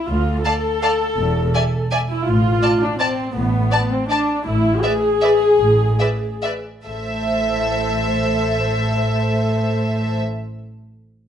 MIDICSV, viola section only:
0, 0, Header, 1, 2, 480
1, 0, Start_track
1, 0, Key_signature, 0, "minor"
1, 0, Tempo, 362319
1, 111, Time_signature, 3, 2, 24, 8
1, 4916, Tempo, 377121
1, 7316, Tempo, 397878
1, 7796, Tempo, 436364
1, 11636, Tempo, 405954
1, 13761, End_track
2, 0, Start_track
2, 0, Title_t, "Viola section"
2, 0, Program_c, 0, 48
2, 101, Note_on_c, 0, 65, 64
2, 588, Note_off_c, 0, 65, 0
2, 590, Note_on_c, 0, 69, 72
2, 2493, Note_off_c, 0, 69, 0
2, 2777, Note_on_c, 0, 64, 61
2, 2987, Note_off_c, 0, 64, 0
2, 3009, Note_on_c, 0, 65, 70
2, 3726, Note_off_c, 0, 65, 0
2, 3727, Note_on_c, 0, 62, 58
2, 3968, Note_off_c, 0, 62, 0
2, 3973, Note_on_c, 0, 60, 58
2, 4430, Note_off_c, 0, 60, 0
2, 4438, Note_on_c, 0, 59, 62
2, 5146, Note_off_c, 0, 59, 0
2, 5164, Note_on_c, 0, 60, 56
2, 5401, Note_off_c, 0, 60, 0
2, 5409, Note_on_c, 0, 62, 57
2, 5856, Note_off_c, 0, 62, 0
2, 5869, Note_on_c, 0, 64, 63
2, 6327, Note_off_c, 0, 64, 0
2, 6337, Note_on_c, 0, 68, 74
2, 8278, Note_off_c, 0, 68, 0
2, 8751, Note_on_c, 0, 69, 40
2, 12470, Note_off_c, 0, 69, 0
2, 13761, End_track
0, 0, End_of_file